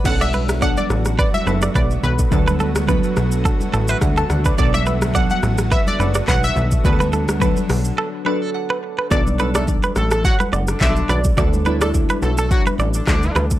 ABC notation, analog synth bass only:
X:1
M:4/4
L:1/16
Q:"Swing 16ths" 1/4=106
K:D
V:1 name="Analog synth bass" clef=bass
B,,,4- B,,, z A,,,3 z F,,,2 B,,,2 B,,,2 | D,,4- D,, z B,,,3 z A,,,2 D,,2 D,,2 | B,,,4- B,,, z A,,,3 z F,,,2 B,,,2 B,,,2 | D,,4- D,, z B,,,2 z8 |
B,,,4- B,,, z A,,,3 z F,,,2 B,,,2 B,,,2 | D,,4- D,, z B,,,3 z A,,,2 D,,2 D,,2 |]